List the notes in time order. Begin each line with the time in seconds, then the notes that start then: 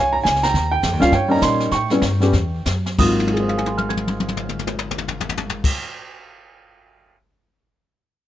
Already playing: C2 C#5 G#5
0.13 A#5
0.24 C#2 G#5, kick, snare, hi-hat pedal
0.36 snare
0.43 G5 A#5, snare
0.45 snare
0.54 D#2, brush sweep, kick, snare
0.71 G5
0.83 F2, kick, snare, hi-hat pedal
0.93 D#2
0.99 C#2 G3 A#3 C#4 F4 F5, snare
1.12 G2 C#5 G5, brush sweep, kick, snare
1.28 G3 A#3 C#4 D#4 A#5
1.41 A#2 C6, kick, snare, hi-hat pedal
1.60 snare
1.71 A2 G5 C#6, brush sweep, kick, snare
1.90 G3 B3 C#4 E4, snare
2.02 G2, kick, snare, hi-hat pedal
2.20 G3 B3 C#4 G4, snare
2.33 E2, brush sweep, kick, snare
2.65 F#2, kick, snare, hi-hat pedal
2.86 snare
2.98 G#1 G#2 F#3 A#3 C4 F4 D#6, kick, crash
3.20 high tom
3.27 high tom
3.33 G#4, high tom
3.40 C5
3.48 F5, high tom
3.58 G#5, high tom
3.66 C6, high tom
3.78 F6, mid tom
3.89 G#6, mid tom
3.97 mid tom
4.08 mid tom
4.20 mid tom
4.28 mid tom
4.37 mid tom
4.49 mid tom
4.59 mid tom
4.67 mid tom
4.79 mid tom
4.91 mid tom
4.98 floor tom
5.08 floor tom
5.20 floor tom
5.29 floor tom
5.37 floor tom
5.49 floor tom
5.64 kick, crash